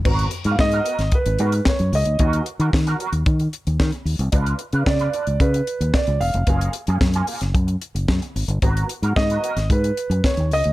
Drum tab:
CC |x---------------|----------------|----------------|----------------|
HH |-xxx-xxxxxxx-xox|xxxx-xxxxxxx-xox|xxxx-xxxxxxx-xox|xxxx-xoxxxxx-xox|
SD |----o--o----o---|----o-------o---|----o-------o---|----o--o----o---|
BD |o---o---o---o---|o---o---o---o---|o---o---o---o---|o---o---o---o---|

CC |----------------|
HH |xxxx-xxxxxxx-xox|
SD |----o--o----o---|
BD |o---o---o---o---|